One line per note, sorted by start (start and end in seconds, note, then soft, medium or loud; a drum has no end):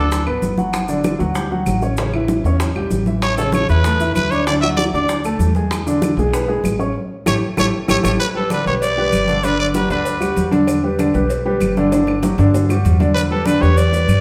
0.00 0.25 D2 medium
0.00 0.21 D4 medium
0.00 0.25 A4 medium
0.00 0.21 D5 medium
0.00 0.22 D6 medium
0.11 high bongo medium
0.11 high conga soft
0.11 maracas medium
0.26 0.41 A1 medium
0.26 0.52 B3 medium
0.26 0.52 B4 medium
0.26 0.53 B5 medium
0.26 high bongo soft
0.26 high conga soft
0.26 claves medium
0.42 1.14 G1 medium
0.42 high bongo soft
0.42 low bongo medium
0.42 high conga medium
0.42 maracas medium
0.58 0.83 F#3 medium
0.58 0.83 F#4 medium
0.58 0.84 F#5 medium
0.58 high bongo soft
0.58 high conga medium
0.58 maracas soft
0.73 high bongo medium
0.73 high conga soft
0.73 claves medium
0.73 maracas medium
0.88 1.14 D3 medium
0.88 1.14 D4 medium
0.88 1.14 D5 medium
0.88 high bongo soft
0.88 high conga soft
0.88 maracas medium
1.04 high bongo medium
1.04 high conga loud
1.04 claves medium
1.04 maracas medium
1.19 1.64 D2 loud
1.19 1.32 F#3 medium
1.19 1.32 F#4 medium
1.19 1.33 F#5 medium
1.19 high conga soft
1.19 maracas soft
1.35 1.48 G3 medium
1.35 1.48 G4 medium
1.35 1.49 G5 medium
1.35 high bongo medium
1.35 high conga soft
1.35 maracas medium
1.51 1.77 F#3 medium
1.51 1.77 F#4 medium
1.51 1.77 F#5 medium
1.51 high bongo soft
1.51 high conga soft
1.66 2.39 A1 medium
1.66 high bongo soft
1.66 low bongo medium
1.66 high conga medium
1.66 claves medium
1.66 maracas medium
1.82 1.95 C#4 medium
1.82 1.95 C#5 medium
1.82 1.96 C#6 medium
1.82 high bongo soft
1.82 maracas soft
1.97 2.11 C#3 medium
1.97 2.11 C#4 medium
1.97 2.11 C#5 medium
1.97 high bongo medium
1.97 high conga soft
1.97 maracas medium
2.13 2.40 E3 medium
2.13 2.39 E4 medium
2.13 2.40 E5 medium
2.13 high bongo soft
2.13 high conga soft
2.13 claves medium
2.28 high bongo medium
2.28 high conga loud
2.28 maracas medium
2.44 2.73 E2 medium
2.44 2.71 C#4 medium
2.44 2.71 C#5 medium
2.44 2.71 C#6 medium
2.44 high conga soft
2.44 maracas soft
2.59 high bongo medium
2.59 high conga soft
2.59 maracas medium
2.75 2.90 B1 medium
2.75 3.01 G3 medium
2.75 3.02 G4 medium
2.75 3.02 G5 medium
2.75 high bongo soft
2.75 high conga soft
2.75 claves medium
2.91 3.63 A1 medium
2.91 high bongo soft
2.91 low bongo medium
2.91 high conga medium
2.91 maracas medium
3.06 3.32 E3 medium
3.06 3.33 E4 medium
3.06 3.33 E5 medium
3.06 high bongo soft
3.06 high conga medium
3.06 maracas soft
3.22 3.37 C#5 medium
3.22 high bongo medium
3.22 high conga soft
3.22 claves medium
3.22 maracas medium
3.37 3.63 C#3 medium
3.37 3.64 C#4 medium
3.37 3.55 A4 medium
3.37 3.64 C#5 medium
3.37 high bongo soft
3.37 high conga soft
3.37 maracas medium
3.52 3.69 C#5 medium
3.52 high bongo medium
3.52 high conga loud
3.52 claves medium
3.52 maracas medium
3.69 4.13 E2 loud
3.69 3.82 E3 medium
3.69 3.82 E4 medium
3.69 4.13 B4 medium
3.69 3.82 E5 medium
3.69 high conga soft
3.69 maracas soft
3.84 3.98 A3 medium
3.84 3.98 A4 medium
3.84 3.98 A5 medium
3.84 high bongo medium
3.84 high conga soft
3.84 maracas medium
4.00 4.26 E3 medium
4.00 4.26 E4 medium
4.00 4.26 E5 medium
4.00 high bongo soft
4.00 high conga soft
4.00 maracas medium
4.15 4.88 D2 medium
4.15 4.32 B4 loud
4.15 high bongo soft
4.15 low bongo medium
4.15 high conga medium
4.15 claves medium
4.15 maracas medium
4.31 4.44 D4 medium
4.31 4.47 C#5 medium
4.31 4.45 D5 medium
4.31 4.45 D6 medium
4.31 high bongo soft
4.31 maracas soft
4.47 4.60 D3 medium
4.47 4.60 D4 medium
4.47 4.54 D5 loud
4.47 4.61 D5 medium
4.47 high bongo medium
4.47 high conga soft
4.47 maracas medium
4.61 4.88 F#3 medium
4.61 4.88 F#4 medium
4.61 4.69 E5 loud
4.61 4.89 F#5 medium
4.61 high bongo soft
4.61 claves medium
4.77 4.84 D5 loud
4.77 high bongo medium
4.77 high conga loud
4.77 maracas medium
4.93 5.37 D2 medium
4.93 5.19 D4 medium
4.93 5.23 D5 medium
4.93 5.20 D5 medium
4.93 5.20 D6 medium
4.93 high conga soft
4.93 maracas soft
5.08 high bongo medium
5.08 high conga soft
5.08 maracas medium
5.24 5.50 A3 medium
5.24 5.50 A4 medium
5.24 5.51 A5 medium
5.24 high bongo soft
5.24 high conga soft
5.24 claves medium
5.24 maracas medium
5.39 6.12 E2 medium
5.39 high bongo soft
5.39 low bongo medium
5.39 high conga medium
5.39 maracas medium
5.55 5.81 G#3 medium
5.55 5.82 G#4 medium
5.55 5.81 G#5 medium
5.55 high bongo soft
5.55 high conga medium
5.55 maracas soft
5.70 high bongo medium
5.70 high conga soft
5.70 claves medium
5.70 maracas medium
5.86 6.12 D3 medium
5.86 6.12 D4 medium
5.86 6.13 D5 medium
5.86 high bongo soft
5.86 high conga soft
5.86 maracas medium
6.02 high bongo medium
6.02 high conga loud
6.02 claves medium
6.02 maracas medium
6.17 6.61 B1 loud
6.17 6.31 G#3 medium
6.17 6.31 G#4 medium
6.17 6.31 G#5 medium
6.17 high conga soft
6.17 maracas soft
6.33 6.46 B3 medium
6.33 6.46 B4 medium
6.33 6.46 B5 medium
6.33 high bongo medium
6.33 high conga soft
6.33 maracas medium
6.48 6.74 G#3 medium
6.48 6.74 G#4 medium
6.48 6.74 G#5 medium
6.48 high bongo soft
6.48 high conga soft
6.64 6.93 A1 medium
6.64 high bongo soft
6.64 low bongo medium
6.64 high conga medium
6.64 claves medium
6.64 maracas medium
6.79 6.92 C#4 medium
6.79 6.92 C#5 medium
6.79 6.93 C#6 medium
6.79 high bongo soft
6.79 maracas soft
7.26 7.38 A1 loud
7.26 7.36 E4 loud
7.26 7.36 G4 medium
7.26 7.36 A4 medium
7.26 7.35 C#5 medium
7.26 high bongo loud
7.26 high conga loud
7.26 claves loud
7.26 maracas loud
7.57 7.69 A1 loud
7.57 7.67 E4 loud
7.57 7.68 G4 loud
7.57 7.68 A4 loud
7.57 7.67 C#5 loud
7.57 high bongo loud
7.57 high conga loud
7.57 claves loud
7.57 maracas loud
7.88 8.00 A1 medium
7.88 7.98 E4 medium
7.88 7.99 G4 loud
7.88 7.98 A4 medium
7.88 7.97 C#5 loud
7.88 high bongo loud
7.88 high conga loud
7.88 claves loud
7.88 maracas loud
8.03 8.16 A1 loud
8.03 8.14 E4 medium
8.03 8.13 G4 medium
8.03 8.14 A4 loud
8.03 8.12 C#5 medium
8.03 high bongo loud
8.03 high conga loud
8.03 claves loud
8.03 maracas loud
8.19 8.27 B4 loud
8.19 cowbell loud
8.19 high conga soft
8.19 claves medium
8.19 maracas medium
8.34 8.48 G3 medium
8.34 8.48 G4 medium
8.34 8.50 A4 medium
8.34 8.48 B4 medium
8.34 high conga soft
8.50 8.63 D3 medium
8.50 8.63 D4 medium
8.50 8.66 B4 medium
8.50 8.63 D5 medium
8.50 cowbell medium
8.50 high conga loud
8.50 claves medium
8.50 maracas medium
8.66 9.10 B1 loud
8.66 8.92 G3 medium
8.66 8.92 G4 medium
8.66 8.92 B4 medium
8.66 8.74 C#5 medium
8.66 high conga soft
8.66 maracas soft
8.82 9.46 D5 loud
8.82 cowbell medium
8.82 high conga soft
8.82 maracas medium
8.97 9.23 G3 medium
8.97 9.23 G4 medium
8.97 9.23 B4 medium
8.97 high conga soft
9.12 9.85 G1 medium
9.12 cowbell medium
9.12 high conga medium
9.12 claves medium
9.12 maracas medium
9.28 9.41 D3 medium
9.28 9.41 D4 medium
9.28 9.41 D5 medium
9.28 high conga medium
9.28 maracas soft
9.43 9.70 D3 medium
9.43 9.70 D4 medium
9.43 9.60 B4 loud
9.43 9.70 D5 medium
9.43 cowbell loud
9.43 high conga soft
9.43 maracas medium
9.59 9.67 D5 medium
9.59 high conga soft
9.59 claves medium
9.74 9.87 F#3 medium
9.74 9.88 F#4 medium
9.74 9.88 G4 medium
9.74 9.90 B4 medium
9.74 cowbell medium
9.74 high conga medium
9.74 maracas medium
9.90 10.33 D2 medium
9.90 10.16 D3 medium
9.90 10.16 D4 loud
9.90 10.49 B4 medium
9.90 10.16 D5 medium
9.90 cowbell medium
9.90 high conga soft
9.90 maracas soft
10.05 cowbell loud
10.05 high conga soft
10.05 maracas medium
10.20 10.46 G3 medium
10.20 10.46 F#4 medium
10.20 10.47 G4 medium
10.20 high conga soft
10.20 claves medium
10.20 maracas medium
10.36 11.09 E2 medium
10.36 cowbell medium
10.36 high conga medium
10.36 maracas medium
10.51 10.77 D3 medium
10.51 10.77 D4 medium
10.51 10.77 D5 medium
10.51 cowbell medium
10.51 high conga medium
10.51 maracas soft
10.67 cowbell loud
10.67 claves medium
10.67 maracas medium
10.84 10.96 G3 medium
10.84 10.96 G4 medium
10.84 10.96 B4 medium
10.84 high conga soft
10.99 11.12 D3 medium
10.99 11.12 D4 medium
10.99 11.12 D5 medium
10.99 cowbell medium
10.99 high conga medium
10.99 claves medium
10.99 maracas medium
11.14 11.58 B1 loud
11.14 11.40 G3 medium
11.14 11.40 G4 medium
11.14 11.40 B4 medium
11.14 high conga soft
11.14 maracas soft
11.30 cowbell loud
11.30 high conga soft
11.30 maracas medium
11.45 11.71 G3 medium
11.45 11.71 G4 medium
11.45 11.71 B4 medium
11.45 high conga soft
11.60 12.33 G1 medium
11.60 cowbell medium
11.60 high conga medium
11.60 claves medium
11.60 maracas medium
11.77 11.90 D3 loud
11.77 11.90 D4 medium
11.77 11.90 D5 medium
11.77 high conga medium
11.77 maracas soft
11.92 12.18 D3 medium
11.92 12.18 D4 medium
11.92 12.18 D5 medium
11.92 cowbell loud
11.92 high bongo loud
11.92 maracas medium
12.07 high bongo medium
12.07 high conga soft
12.07 claves medium
12.23 12.36 F#3 medium
12.23 12.36 F#4 medium
12.23 12.36 G4 medium
12.23 cowbell medium
12.23 high bongo medium
12.23 high conga loud
12.23 maracas medium
12.38 12.82 G2 loud
12.38 12.64 D3 medium
12.38 12.64 D4 medium
12.38 12.64 D5 medium
12.38 cowbell medium
12.38 low bongo medium
12.38 high conga soft
12.38 maracas soft
12.54 cowbell medium
12.54 low bongo loud
12.54 high conga soft
12.54 maracas medium
12.69 12.95 G3 medium
12.69 12.95 F#4 medium
12.69 12.96 G4 medium
12.69 low bongo medium
12.69 high conga soft
12.69 claves medium
12.69 maracas medium
12.85 13.57 E2 medium
12.85 cowbell medium
12.85 low bongo medium
12.85 high conga medium
12.85 maracas medium
13.00 13.26 D3 medium
13.00 13.26 D4 medium
13.00 13.26 D5 medium
13.00 cowbell medium
13.00 low bongo medium
13.00 high conga medium
13.00 maracas soft
13.14 13.22 B4 medium
13.14 cowbell loud
13.14 high conga soft
13.14 claves medium
13.14 maracas medium
13.31 13.44 G3 medium
13.31 13.44 G4 medium
13.31 13.48 A4 medium
13.31 13.44 B4 medium
13.31 high conga soft
13.46 13.59 D3 medium
13.46 13.59 D4 medium
13.46 13.63 B4 medium
13.46 13.59 D5 medium
13.46 cowbell medium
13.46 high conga loud
13.46 claves medium
13.46 maracas medium
13.61 14.06 E2 loud
13.61 13.87 G3 medium
13.61 13.87 G4 medium
13.61 13.87 B4 medium
13.61 13.79 C#5 medium
13.61 high conga soft
13.61 maracas soft
13.77 14.21 D5 medium
13.77 cowbell loud
13.77 high conga soft
13.77 maracas medium
13.92 14.18 G3 medium
13.92 14.19 G4 medium
13.92 14.19 B4 medium
13.92 high conga soft
13.92 maracas medium
14.08 14.21 G2 medium
14.08 cowbell medium
14.08 high conga medium
14.08 claves medium
14.08 maracas medium